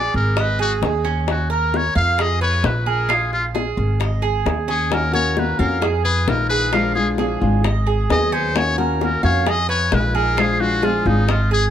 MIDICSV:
0, 0, Header, 1, 7, 480
1, 0, Start_track
1, 0, Key_signature, -6, "minor"
1, 0, Tempo, 455235
1, 1345, Time_signature, 4, 2, 24, 8
1, 12340, End_track
2, 0, Start_track
2, 0, Title_t, "Muted trumpet"
2, 0, Program_c, 0, 59
2, 0, Note_on_c, 0, 74, 94
2, 162, Note_off_c, 0, 74, 0
2, 169, Note_on_c, 0, 70, 85
2, 428, Note_on_c, 0, 71, 94
2, 444, Note_off_c, 0, 70, 0
2, 642, Note_off_c, 0, 71, 0
2, 649, Note_on_c, 0, 66, 97
2, 786, Note_off_c, 0, 66, 0
2, 1378, Note_on_c, 0, 66, 75
2, 1585, Note_off_c, 0, 66, 0
2, 1597, Note_on_c, 0, 70, 84
2, 1861, Note_on_c, 0, 73, 94
2, 1876, Note_off_c, 0, 70, 0
2, 2062, Note_off_c, 0, 73, 0
2, 2069, Note_on_c, 0, 77, 104
2, 2338, Note_on_c, 0, 75, 90
2, 2354, Note_off_c, 0, 77, 0
2, 2546, Note_off_c, 0, 75, 0
2, 2552, Note_on_c, 0, 73, 94
2, 2804, Note_on_c, 0, 71, 81
2, 2820, Note_off_c, 0, 73, 0
2, 3034, Note_on_c, 0, 70, 82
2, 3050, Note_off_c, 0, 71, 0
2, 3296, Note_on_c, 0, 68, 79
2, 3311, Note_off_c, 0, 70, 0
2, 3505, Note_off_c, 0, 68, 0
2, 3511, Note_on_c, 0, 65, 83
2, 3652, Note_off_c, 0, 65, 0
2, 4952, Note_on_c, 0, 68, 93
2, 5204, Note_on_c, 0, 70, 83
2, 5220, Note_off_c, 0, 68, 0
2, 5415, Note_off_c, 0, 70, 0
2, 5422, Note_on_c, 0, 73, 102
2, 5687, Note_on_c, 0, 71, 84
2, 5702, Note_off_c, 0, 73, 0
2, 5894, Note_on_c, 0, 70, 88
2, 5910, Note_off_c, 0, 71, 0
2, 6136, Note_off_c, 0, 70, 0
2, 6374, Note_on_c, 0, 68, 95
2, 6634, Note_on_c, 0, 70, 83
2, 6650, Note_off_c, 0, 68, 0
2, 6839, Note_off_c, 0, 70, 0
2, 6845, Note_on_c, 0, 71, 112
2, 7115, Note_on_c, 0, 70, 91
2, 7131, Note_off_c, 0, 71, 0
2, 7322, Note_off_c, 0, 70, 0
2, 7328, Note_on_c, 0, 68, 92
2, 7475, Note_off_c, 0, 68, 0
2, 8555, Note_on_c, 0, 75, 93
2, 8785, Note_on_c, 0, 72, 94
2, 8800, Note_off_c, 0, 75, 0
2, 9041, Note_on_c, 0, 73, 98
2, 9057, Note_off_c, 0, 72, 0
2, 9267, Note_off_c, 0, 73, 0
2, 9273, Note_on_c, 0, 65, 49
2, 9442, Note_off_c, 0, 65, 0
2, 9529, Note_on_c, 0, 70, 81
2, 9742, Note_off_c, 0, 70, 0
2, 9748, Note_on_c, 0, 73, 93
2, 10008, Note_on_c, 0, 75, 100
2, 10023, Note_off_c, 0, 73, 0
2, 10217, Note_off_c, 0, 75, 0
2, 10223, Note_on_c, 0, 73, 102
2, 10482, Note_on_c, 0, 71, 88
2, 10498, Note_off_c, 0, 73, 0
2, 10706, Note_on_c, 0, 70, 91
2, 10722, Note_off_c, 0, 71, 0
2, 10968, Note_on_c, 0, 68, 84
2, 10984, Note_off_c, 0, 70, 0
2, 11182, Note_on_c, 0, 66, 94
2, 11198, Note_off_c, 0, 68, 0
2, 11438, Note_on_c, 0, 65, 79
2, 11454, Note_off_c, 0, 66, 0
2, 11669, Note_on_c, 0, 63, 89
2, 11684, Note_off_c, 0, 65, 0
2, 11922, Note_on_c, 0, 65, 80
2, 11938, Note_off_c, 0, 63, 0
2, 12150, Note_off_c, 0, 65, 0
2, 12156, Note_on_c, 0, 68, 102
2, 12297, Note_off_c, 0, 68, 0
2, 12340, End_track
3, 0, Start_track
3, 0, Title_t, "Cuban tres"
3, 0, Program_c, 1, 25
3, 0, Note_on_c, 1, 68, 67
3, 369, Note_off_c, 1, 68, 0
3, 385, Note_on_c, 1, 75, 71
3, 619, Note_off_c, 1, 75, 0
3, 623, Note_on_c, 1, 68, 78
3, 1089, Note_off_c, 1, 68, 0
3, 1102, Note_on_c, 1, 61, 80
3, 1569, Note_off_c, 1, 61, 0
3, 1580, Note_on_c, 1, 70, 81
3, 2047, Note_off_c, 1, 70, 0
3, 2059, Note_on_c, 1, 77, 77
3, 2294, Note_off_c, 1, 77, 0
3, 2300, Note_on_c, 1, 68, 69
3, 2534, Note_off_c, 1, 68, 0
3, 2544, Note_on_c, 1, 71, 76
3, 3008, Note_off_c, 1, 71, 0
3, 3019, Note_on_c, 1, 68, 75
3, 3253, Note_off_c, 1, 68, 0
3, 3256, Note_on_c, 1, 65, 82
3, 3724, Note_off_c, 1, 65, 0
3, 3739, Note_on_c, 1, 68, 70
3, 4205, Note_off_c, 1, 68, 0
3, 4216, Note_on_c, 1, 75, 67
3, 4451, Note_off_c, 1, 75, 0
3, 4451, Note_on_c, 1, 68, 73
3, 4920, Note_off_c, 1, 68, 0
3, 4935, Note_on_c, 1, 61, 77
3, 5402, Note_off_c, 1, 61, 0
3, 5414, Note_on_c, 1, 70, 78
3, 5881, Note_off_c, 1, 70, 0
3, 5893, Note_on_c, 1, 77, 78
3, 6128, Note_off_c, 1, 77, 0
3, 6133, Note_on_c, 1, 68, 72
3, 6368, Note_off_c, 1, 68, 0
3, 6378, Note_on_c, 1, 71, 76
3, 6843, Note_off_c, 1, 71, 0
3, 6856, Note_on_c, 1, 68, 74
3, 7090, Note_off_c, 1, 68, 0
3, 7096, Note_on_c, 1, 65, 78
3, 7562, Note_off_c, 1, 65, 0
3, 7580, Note_on_c, 1, 68, 69
3, 8044, Note_off_c, 1, 68, 0
3, 8059, Note_on_c, 1, 75, 74
3, 8291, Note_off_c, 1, 75, 0
3, 8293, Note_on_c, 1, 68, 68
3, 8761, Note_off_c, 1, 68, 0
3, 8776, Note_on_c, 1, 61, 92
3, 9243, Note_off_c, 1, 61, 0
3, 9258, Note_on_c, 1, 70, 74
3, 9725, Note_off_c, 1, 70, 0
3, 9733, Note_on_c, 1, 77, 73
3, 9969, Note_off_c, 1, 77, 0
3, 9977, Note_on_c, 1, 68, 72
3, 10210, Note_off_c, 1, 68, 0
3, 10215, Note_on_c, 1, 71, 74
3, 10683, Note_off_c, 1, 71, 0
3, 10698, Note_on_c, 1, 68, 74
3, 10932, Note_off_c, 1, 68, 0
3, 10936, Note_on_c, 1, 65, 80
3, 11405, Note_off_c, 1, 65, 0
3, 11412, Note_on_c, 1, 68, 66
3, 11883, Note_off_c, 1, 68, 0
3, 11896, Note_on_c, 1, 75, 67
3, 12132, Note_off_c, 1, 75, 0
3, 12136, Note_on_c, 1, 68, 68
3, 12340, Note_off_c, 1, 68, 0
3, 12340, End_track
4, 0, Start_track
4, 0, Title_t, "Nylon-string guitar"
4, 0, Program_c, 2, 24
4, 5170, Note_on_c, 2, 51, 68
4, 5178, Note_on_c, 2, 58, 68
4, 5187, Note_on_c, 2, 61, 75
4, 5193, Note_on_c, 2, 66, 77
4, 5393, Note_off_c, 2, 66, 0
4, 5404, Note_off_c, 2, 51, 0
4, 5405, Note_on_c, 2, 66, 69
4, 5407, Note_off_c, 2, 61, 0
4, 5409, Note_off_c, 2, 58, 0
4, 5419, Note_on_c, 2, 61, 55
4, 5428, Note_on_c, 2, 58, 52
4, 5642, Note_off_c, 2, 66, 0
4, 5649, Note_off_c, 2, 58, 0
4, 5649, Note_off_c, 2, 61, 0
4, 5651, Note_on_c, 2, 51, 50
4, 5661, Note_on_c, 2, 58, 54
4, 5668, Note_on_c, 2, 61, 52
4, 5672, Note_on_c, 2, 66, 56
4, 5879, Note_off_c, 2, 66, 0
4, 5885, Note_off_c, 2, 51, 0
4, 5890, Note_off_c, 2, 58, 0
4, 5890, Note_off_c, 2, 61, 0
4, 5892, Note_on_c, 2, 66, 63
4, 5902, Note_on_c, 2, 61, 68
4, 5911, Note_on_c, 2, 58, 54
4, 6125, Note_off_c, 2, 66, 0
4, 6131, Note_off_c, 2, 61, 0
4, 6134, Note_off_c, 2, 58, 0
4, 6615, Note_on_c, 2, 51, 55
4, 6623, Note_on_c, 2, 56, 52
4, 6632, Note_on_c, 2, 63, 57
4, 6636, Note_on_c, 2, 65, 61
4, 7084, Note_off_c, 2, 51, 0
4, 7085, Note_off_c, 2, 56, 0
4, 7089, Note_on_c, 2, 53, 63
4, 7095, Note_off_c, 2, 63, 0
4, 7097, Note_off_c, 2, 65, 0
4, 7098, Note_on_c, 2, 56, 71
4, 7103, Note_on_c, 2, 62, 69
4, 7112, Note_on_c, 2, 65, 85
4, 7323, Note_off_c, 2, 65, 0
4, 7324, Note_off_c, 2, 53, 0
4, 7328, Note_off_c, 2, 56, 0
4, 7331, Note_off_c, 2, 62, 0
4, 7336, Note_on_c, 2, 65, 64
4, 7346, Note_on_c, 2, 62, 65
4, 7358, Note_on_c, 2, 56, 52
4, 7567, Note_off_c, 2, 65, 0
4, 7572, Note_off_c, 2, 62, 0
4, 7573, Note_off_c, 2, 56, 0
4, 7577, Note_on_c, 2, 53, 52
4, 7586, Note_on_c, 2, 56, 47
4, 7591, Note_on_c, 2, 62, 60
4, 7599, Note_on_c, 2, 65, 57
4, 7803, Note_off_c, 2, 65, 0
4, 7808, Note_off_c, 2, 53, 0
4, 7812, Note_off_c, 2, 56, 0
4, 7815, Note_off_c, 2, 62, 0
4, 7816, Note_on_c, 2, 65, 67
4, 7829, Note_on_c, 2, 62, 60
4, 7838, Note_on_c, 2, 56, 50
4, 8047, Note_off_c, 2, 65, 0
4, 8054, Note_off_c, 2, 62, 0
4, 8058, Note_off_c, 2, 56, 0
4, 8533, Note_on_c, 2, 54, 50
4, 8540, Note_on_c, 2, 59, 58
4, 8550, Note_on_c, 2, 63, 56
4, 8554, Note_on_c, 2, 68, 58
4, 9006, Note_off_c, 2, 54, 0
4, 9010, Note_off_c, 2, 59, 0
4, 9010, Note_on_c, 2, 51, 72
4, 9015, Note_off_c, 2, 63, 0
4, 9016, Note_off_c, 2, 68, 0
4, 9021, Note_on_c, 2, 58, 71
4, 9027, Note_on_c, 2, 61, 73
4, 9031, Note_on_c, 2, 66, 75
4, 9243, Note_off_c, 2, 66, 0
4, 9245, Note_off_c, 2, 51, 0
4, 9250, Note_off_c, 2, 58, 0
4, 9253, Note_off_c, 2, 61, 0
4, 9255, Note_on_c, 2, 66, 71
4, 9270, Note_on_c, 2, 61, 65
4, 9276, Note_on_c, 2, 58, 50
4, 9487, Note_off_c, 2, 66, 0
4, 9494, Note_off_c, 2, 58, 0
4, 9495, Note_off_c, 2, 61, 0
4, 9497, Note_on_c, 2, 51, 51
4, 9506, Note_on_c, 2, 58, 52
4, 9514, Note_on_c, 2, 61, 51
4, 9519, Note_on_c, 2, 66, 57
4, 9722, Note_off_c, 2, 66, 0
4, 9728, Note_off_c, 2, 51, 0
4, 9733, Note_off_c, 2, 58, 0
4, 9735, Note_off_c, 2, 61, 0
4, 9735, Note_on_c, 2, 66, 61
4, 9748, Note_on_c, 2, 61, 68
4, 9758, Note_on_c, 2, 58, 60
4, 9968, Note_off_c, 2, 66, 0
4, 9974, Note_off_c, 2, 61, 0
4, 9978, Note_off_c, 2, 58, 0
4, 10456, Note_on_c, 2, 51, 51
4, 10466, Note_on_c, 2, 56, 61
4, 10472, Note_on_c, 2, 63, 59
4, 10478, Note_on_c, 2, 65, 58
4, 10929, Note_off_c, 2, 51, 0
4, 10934, Note_off_c, 2, 56, 0
4, 10937, Note_off_c, 2, 63, 0
4, 10938, Note_on_c, 2, 53, 66
4, 10940, Note_off_c, 2, 65, 0
4, 10946, Note_on_c, 2, 56, 77
4, 10954, Note_on_c, 2, 62, 75
4, 10963, Note_on_c, 2, 65, 70
4, 11167, Note_off_c, 2, 65, 0
4, 11170, Note_off_c, 2, 53, 0
4, 11174, Note_off_c, 2, 56, 0
4, 11178, Note_off_c, 2, 62, 0
4, 11180, Note_on_c, 2, 65, 67
4, 11192, Note_on_c, 2, 62, 55
4, 11200, Note_on_c, 2, 56, 49
4, 11411, Note_off_c, 2, 65, 0
4, 11413, Note_off_c, 2, 56, 0
4, 11417, Note_off_c, 2, 62, 0
4, 11420, Note_on_c, 2, 53, 52
4, 11425, Note_on_c, 2, 56, 53
4, 11436, Note_on_c, 2, 62, 55
4, 11442, Note_on_c, 2, 65, 63
4, 11651, Note_off_c, 2, 53, 0
4, 11651, Note_off_c, 2, 65, 0
4, 11654, Note_off_c, 2, 56, 0
4, 11660, Note_off_c, 2, 62, 0
4, 11664, Note_on_c, 2, 65, 67
4, 11673, Note_on_c, 2, 62, 63
4, 11685, Note_on_c, 2, 56, 59
4, 11894, Note_off_c, 2, 65, 0
4, 11898, Note_off_c, 2, 62, 0
4, 11904, Note_off_c, 2, 56, 0
4, 12340, End_track
5, 0, Start_track
5, 0, Title_t, "Upright bass"
5, 0, Program_c, 3, 32
5, 149, Note_on_c, 3, 32, 91
5, 825, Note_off_c, 3, 32, 0
5, 862, Note_on_c, 3, 39, 81
5, 1996, Note_off_c, 3, 39, 0
5, 2064, Note_on_c, 3, 41, 98
5, 2740, Note_off_c, 3, 41, 0
5, 2780, Note_on_c, 3, 34, 86
5, 3913, Note_off_c, 3, 34, 0
5, 3977, Note_on_c, 3, 32, 88
5, 4655, Note_off_c, 3, 32, 0
5, 4699, Note_on_c, 3, 39, 84
5, 5832, Note_off_c, 3, 39, 0
5, 5898, Note_on_c, 3, 41, 100
5, 6576, Note_off_c, 3, 41, 0
5, 6615, Note_on_c, 3, 34, 76
5, 7750, Note_off_c, 3, 34, 0
5, 7819, Note_on_c, 3, 32, 93
5, 8496, Note_off_c, 3, 32, 0
5, 8537, Note_on_c, 3, 39, 85
5, 9672, Note_off_c, 3, 39, 0
5, 9737, Note_on_c, 3, 41, 94
5, 10417, Note_off_c, 3, 41, 0
5, 10461, Note_on_c, 3, 34, 84
5, 11596, Note_off_c, 3, 34, 0
5, 11656, Note_on_c, 3, 32, 97
5, 12338, Note_off_c, 3, 32, 0
5, 12340, End_track
6, 0, Start_track
6, 0, Title_t, "Muted nylon-string guitar strokes"
6, 6133, Note_on_c, 9, 29, 62
6, 6239, Note_off_c, 9, 29, 0
6, 8057, Note_on_c, 9, 29, 64
6, 8162, Note_off_c, 9, 29, 0
6, 9973, Note_on_c, 9, 29, 58
6, 10079, Note_off_c, 9, 29, 0
6, 11900, Note_on_c, 9, 29, 63
6, 12006, Note_off_c, 9, 29, 0
6, 12340, End_track
7, 0, Start_track
7, 0, Title_t, "Drums"
7, 151, Note_on_c, 9, 60, 35
7, 256, Note_off_c, 9, 60, 0
7, 388, Note_on_c, 9, 60, 73
7, 493, Note_off_c, 9, 60, 0
7, 871, Note_on_c, 9, 60, 63
7, 871, Note_on_c, 9, 61, 87
7, 977, Note_off_c, 9, 60, 0
7, 977, Note_off_c, 9, 61, 0
7, 1110, Note_on_c, 9, 60, 34
7, 1216, Note_off_c, 9, 60, 0
7, 1348, Note_on_c, 9, 60, 70
7, 1454, Note_off_c, 9, 60, 0
7, 1834, Note_on_c, 9, 60, 58
7, 1940, Note_off_c, 9, 60, 0
7, 2308, Note_on_c, 9, 60, 74
7, 2413, Note_off_c, 9, 60, 0
7, 2784, Note_on_c, 9, 60, 71
7, 2784, Note_on_c, 9, 61, 79
7, 2889, Note_off_c, 9, 60, 0
7, 2889, Note_off_c, 9, 61, 0
7, 3267, Note_on_c, 9, 60, 70
7, 3373, Note_off_c, 9, 60, 0
7, 3510, Note_on_c, 9, 60, 35
7, 3616, Note_off_c, 9, 60, 0
7, 3749, Note_on_c, 9, 60, 53
7, 3855, Note_off_c, 9, 60, 0
7, 3984, Note_on_c, 9, 60, 34
7, 4089, Note_off_c, 9, 60, 0
7, 4225, Note_on_c, 9, 60, 73
7, 4330, Note_off_c, 9, 60, 0
7, 4706, Note_on_c, 9, 60, 68
7, 4706, Note_on_c, 9, 61, 83
7, 4812, Note_off_c, 9, 60, 0
7, 4812, Note_off_c, 9, 61, 0
7, 4945, Note_on_c, 9, 60, 32
7, 5051, Note_off_c, 9, 60, 0
7, 5184, Note_on_c, 9, 60, 74
7, 5289, Note_off_c, 9, 60, 0
7, 5660, Note_on_c, 9, 60, 61
7, 5765, Note_off_c, 9, 60, 0
7, 6139, Note_on_c, 9, 60, 66
7, 6245, Note_off_c, 9, 60, 0
7, 6618, Note_on_c, 9, 60, 68
7, 6618, Note_on_c, 9, 61, 82
7, 6724, Note_off_c, 9, 60, 0
7, 6724, Note_off_c, 9, 61, 0
7, 7093, Note_on_c, 9, 60, 72
7, 7198, Note_off_c, 9, 60, 0
7, 7332, Note_on_c, 9, 60, 33
7, 7437, Note_off_c, 9, 60, 0
7, 7572, Note_on_c, 9, 60, 55
7, 7678, Note_off_c, 9, 60, 0
7, 7819, Note_on_c, 9, 60, 34
7, 7924, Note_off_c, 9, 60, 0
7, 8060, Note_on_c, 9, 60, 72
7, 8165, Note_off_c, 9, 60, 0
7, 8544, Note_on_c, 9, 60, 74
7, 8544, Note_on_c, 9, 61, 87
7, 8650, Note_off_c, 9, 60, 0
7, 8650, Note_off_c, 9, 61, 0
7, 8787, Note_on_c, 9, 60, 35
7, 8893, Note_off_c, 9, 60, 0
7, 9022, Note_on_c, 9, 60, 80
7, 9127, Note_off_c, 9, 60, 0
7, 9503, Note_on_c, 9, 60, 57
7, 9609, Note_off_c, 9, 60, 0
7, 9980, Note_on_c, 9, 60, 72
7, 10086, Note_off_c, 9, 60, 0
7, 10460, Note_on_c, 9, 60, 68
7, 10460, Note_on_c, 9, 61, 90
7, 10565, Note_off_c, 9, 60, 0
7, 10565, Note_off_c, 9, 61, 0
7, 10944, Note_on_c, 9, 60, 69
7, 11050, Note_off_c, 9, 60, 0
7, 11179, Note_on_c, 9, 60, 34
7, 11285, Note_off_c, 9, 60, 0
7, 11420, Note_on_c, 9, 60, 57
7, 11525, Note_off_c, 9, 60, 0
7, 11661, Note_on_c, 9, 60, 34
7, 11767, Note_off_c, 9, 60, 0
7, 11900, Note_on_c, 9, 60, 75
7, 12005, Note_off_c, 9, 60, 0
7, 12340, End_track
0, 0, End_of_file